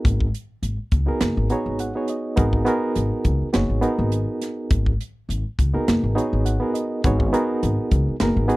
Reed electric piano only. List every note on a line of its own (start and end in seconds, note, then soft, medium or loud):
0.00 0.27 B3 medium
0.00 0.27 D#4 medium
0.00 0.27 F#4 medium
0.00 0.27 G#4 medium
0.00 0.27 A#4 loud
1.06 1.47 B3 medium
1.06 1.47 D#4 medium
1.06 1.47 F#4 medium
1.06 1.48 G#4 medium
1.06 1.48 A#4 medium
1.50 1.92 B3 medium
1.50 1.92 D#4 medium
1.50 1.92 F#4 medium
1.50 1.92 G#4 medium
1.50 1.93 C#5 medium
1.50 1.78 A#5 medium
1.80 2.07 F#5 medium
1.95 2.35 B3 medium
1.95 2.35 D#4 medium
1.95 2.35 F#4 medium
1.95 2.36 G#4 medium
1.95 2.36 C#5 medium
2.09 2.36 D#5 medium
2.36 2.64 B3 medium
2.36 2.64 D#4 medium
2.36 2.65 F#4 medium
2.36 2.65 G#4 medium
2.36 2.65 A#4 loud
2.65 3.48 B3 medium
2.65 3.48 D#4 medium
2.65 3.48 F#4 medium
2.65 3.49 G#4 medium
2.65 3.49 A#4 loud
3.53 3.80 B3 medium
3.53 3.81 D#4 medium
3.53 3.81 F#4 medium
3.53 3.81 G#4 medium
3.53 3.82 C#5 medium
3.81 4.92 B3 medium
3.81 4.92 D#4 medium
3.81 4.92 F#4 medium
3.81 4.92 G#4 medium
3.81 4.92 A#4 loud
5.74 6.14 B3 medium
5.74 6.14 D#4 medium
5.74 6.14 F#4 medium
5.74 6.14 G#4 medium
5.74 6.14 A#4 medium
6.15 6.58 B3 medium
6.15 6.57 D#4 medium
6.15 6.58 F#4 medium
6.15 6.58 G#4 medium
6.15 6.58 C#5 medium
6.45 6.73 F#5 medium
6.60 7.01 B3 medium
6.60 7.01 D#4 medium
6.60 7.01 F#4 medium
6.60 7.02 G#4 medium
6.60 7.02 A#4 medium
6.74 7.02 D#5 medium
7.04 7.32 B3 medium
7.04 7.32 D#4 medium
7.04 7.32 F#4 medium
7.04 7.33 G#4 medium
7.04 7.33 C#5 loud
7.33 8.15 B3 loud
7.33 8.15 D#4 medium
7.33 8.15 F#4 medium
7.33 8.15 G#4 medium
7.33 8.16 A#4 loud
8.20 8.47 B3 medium
8.20 8.47 D#4 medium
8.20 8.48 F#4 medium
8.20 8.48 G#4 medium
8.20 8.49 A#4 medium
8.48 8.57 B3 medium
8.48 8.57 D#4 medium
8.48 8.57 F#4 medium
8.48 8.57 G#4 medium
8.48 8.57 B4 loud